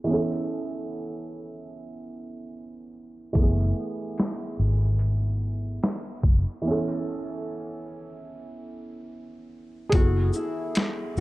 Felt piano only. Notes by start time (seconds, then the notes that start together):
0.04 E3 B3
0.10 C#4 A4
3.33 E3 A3
3.39 B3 G#4
6.62 E3 B3
6.67 C#4 A4
9.90 B3 G#4
9.96 E4